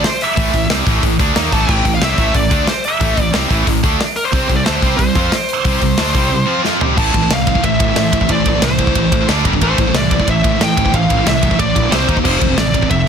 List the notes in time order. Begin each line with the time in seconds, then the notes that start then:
0.04 C5, snare, open hi-hat
0.21 E5, open hi-hat
0.36 A1 A2 E3 A3, kick, open hi-hat
0.53 A1 A2 E3, kick, open hi-hat
0.69 C2 C3 G3 C4, snare, open hi-hat
0.86 A1 A2 E3 A3, kick, open hi-hat
1.03 A1 A2 E3, kick, open hi-hat
1.19 D2 D3 A3 D4, kick, open hi-hat
1.36 D#2 D#3 A#3 D#4, snare, open hi-hat
1.52 A1 A2 E3 A3 A5, kick, open hi-hat
1.61 G5
1.69 A1 A2 E3 A3, kick, crash
1.85 A1 A2 E3, kick, open hi-hat
1.95 F5
2.01 C2 C3 G3 C4 E5, snare, open hi-hat
2.17 A1 A2 E3 A3, kick, open hi-hat
2.34 A1 A2 E3 D5, kick, open hi-hat
2.51 D2 D3 A3 D4, kick, open hi-hat
2.67 C5, snare, open hi-hat
2.84 E5, open hi-hat
3.00 A1 A2 E3 A3, kick, open hi-hat
3.17 A1 A2 E3, kick, open hi-hat
3.33 C2 C3 G3 C4, snare, open hi-hat
3.50 A1 A2 E3 A3, kick, open hi-hat
3.67 A1 A2 E3, kick, open hi-hat
3.84 D2 D3 A3 D4, kick, open hi-hat
4.01 snare, open hi-hat
4.16 A#4, open hi-hat
4.25 C5
4.33 C2 C3 G3 C4, kick, open hi-hat
4.49 C2 C3 G3, kick, open hi-hat
4.56 D5
4.64 D2 D3 A3 D4 C5, snare, open hi-hat
4.82 C2 C3 G3 C4, kick, open hi-hat
4.97 C2 C3 G3 C5, kick, open hi-hat
5.15 F2 F3 C4 F4, kick, open hi-hat
5.32 snare, open hi-hat
5.49 open hi-hat
5.65 C2 C3 G3 C4, kick, open hi-hat
5.81 C2 C3 G3, kick, open hi-hat
5.97 D2 D3 A3 D4, snare, open hi-hat
6.14 C2 C3 G3 C4, kick, open hi-hat
6.29 C3 G3
6.46 F3 C4 F4
6.63 F3 C4 F4, snare
6.80 C3 G3 C4, floor tom
6.96 A1 A2 E3 A3 A4 C5 A5, kick, crash
7.13 A1 A2 E3, kick, ride
7.21 A2 E3
7.30 C2 A2 E3 F5, snare, ride
7.47 A2 E3, kick, ride
7.55 A2 E3, kick
7.63 A1 A2 E3 E5, kick, ride
7.79 A2 E3, kick, ride
7.88 A2 E3
7.96 A2 E3, snare, ride
8.12 A1 A2 E3, kick, ride
8.20 A2 E3, kick
8.29 A1 A2 E3 D5, kick, ride
8.46 A1 A2 E3, kick, ride
8.55 A2 E3
8.62 C2 A2 E3 C5, snare, ride
8.79 A2 E3, kick, ride
8.87 A2 E3, kick
8.95 A1 A2 E3, kick, ride
9.12 A2 E3, kick, ride
9.21 A2 E3
9.28 D2 D3 A3 D4 D5, snare, ride
9.45 G1 G2 D3 G3 D4 G4, kick, ride
9.53 G2 D3, kick
9.61 A1 A2 E3 A3 A4 C5, kick, ride
9.78 A1 A2 E3, kick, ride
9.86 A2 E3
9.94 C2 A2 E3 D5, snare, ride
10.11 A2 E3, kick, ride
10.19 A2 E3, kick
10.27 A1 A2 E3 E5, kick, ride
10.43 A2 E3, kick, ride
10.51 A2 E3
10.59 A2 E3 G5, snare, ride
10.77 A1 A2 E3, kick, ride
10.85 A2 E3, kick
10.94 A1 A2 E3 F5, kick, ride
11.10 A1 A2 E3, kick, ride
11.18 A2 E3
11.26 C2 A2 E3 E5, snare, ride
11.43 A2 E3, kick, ride
11.51 A2 E3, kick
11.59 A1 A2 E3 D5, kick, ride
11.75 A#1 A2 E3, kick, ride
11.84 A2 E3
11.91 C2 C3 G3 C4 D4 C5, snare, ride
12.08 D#2 D#3 A#3 D#4 F4 D#5, kick, ride
12.16 D#3 A#3, kick
12.24 F1 F2 C3 F3 C4 G4 A4 C5, kick, crash
12.40 F1 F2 C3, kick, ride
12.49 F2 C3
12.56 A1 F2 C3 D5, snare, ride
12.72 F2 C3, kick, ride
12.81 F2 C3, kick
12.89 F1 F2 C3 E5, kick, ride